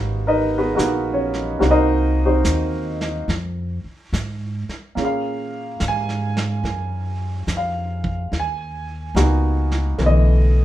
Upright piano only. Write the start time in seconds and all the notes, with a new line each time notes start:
Already playing: A#3 B3 C#4 D#4 F#4 G4 C#5
0.27 D#4 A#4 B4 D#5
0.58 B3 F#4 G#4 B4
0.75 A#3 B3 D#4 F#4
1.13 C#4 C#5
1.59 A#3 C4 D#4 F#4
1.71 D#4 A#4 C5 D#5
2.25 C4 D#4 F#4 C5
4.95 A#3 C#4 F4 G#4
5.05 F5
5.88 G#5
7.57 F5
8.40 G#5
9.15 A#3 B3 D#4 F#4
9.99 D3 E3 A3 B3
10.06 D#5